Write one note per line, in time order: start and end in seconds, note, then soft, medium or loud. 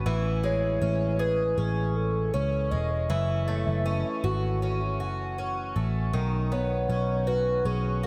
0.00 0.13 B3 soft
0.00 0.81 C#4 medium
0.00 0.13 F#4 medium
0.06 0.78 A1 medium
0.06 3.09 E3 medium
0.43 2.70 G#3 soft
0.43 1.16 C#5 medium
0.81 1.54 A1 medium
0.81 1.57 C#4 soft
1.19 1.95 G#4 medium
1.19 1.59 B4 medium
1.57 2.30 A1 loud
1.57 2.33 C#4 medium
1.57 1.97 G#4 medium
1.96 2.35 A4 medium
2.34 2.73 C#2 medium
2.34 3.85 C#4 medium
2.34 2.72 C#5 medium
2.71 3.08 E1 medium
2.71 3.17 G#3 soft
2.71 3.11 D#5 medium
3.09 3.64 F#1 medium
3.09 6.13 E3 medium
3.09 4.61 E5 medium
3.48 5.75 A3 soft
3.67 4.02 F#1 medium
3.86 4.62 C#4 medium
4.24 5.00 G#1 medium
4.24 5.00 F#4 medium
4.62 5.38 C#4 medium
5.00 5.71 F#1 medium
5.00 7.27 F#4 soft
5.38 6.55 C#4 medium
5.76 6.11 A1 medium
5.76 6.21 A3 soft
6.13 6.85 B1 medium
6.13 8.07 D#3 medium
6.51 8.07 B3 medium
6.51 7.29 C#5 medium
6.89 7.61 B1 medium
6.89 7.65 C#4 soft
7.27 8.02 F#4 medium
7.27 7.67 B4 medium
7.65 8.07 B1 medium
7.65 8.07 C#4 soft
7.65 8.05 G#4 medium
8.03 8.07 F#4 medium